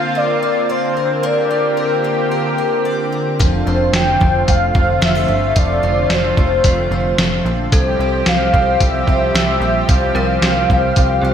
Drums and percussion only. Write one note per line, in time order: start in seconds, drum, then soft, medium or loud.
3.40 kick loud
3.40 closed hi-hat medium
3.94 snare loud
3.94 closed hi-hat medium
4.21 kick medium
4.48 kick medium
4.48 closed hi-hat medium
4.75 kick medium
5.02 snare loud
5.02 closed hi-hat medium
5.56 kick medium
5.56 closed hi-hat medium
6.10 snare loud
6.10 closed hi-hat medium
6.37 kick medium
6.64 kick medium
6.64 closed hi-hat medium
7.18 snare loud
7.18 closed hi-hat medium
7.72 kick loud
7.72 closed hi-hat medium
8.26 snare loud
8.26 closed hi-hat medium
8.54 kick medium
8.80 kick medium
8.80 closed hi-hat medium
9.08 kick medium
9.35 snare loud
9.35 closed hi-hat medium
9.89 kick loud
9.89 closed hi-hat medium
10.42 snare loud
10.42 closed hi-hat medium
10.70 kick medium
10.96 kick medium
10.96 closed hi-hat medium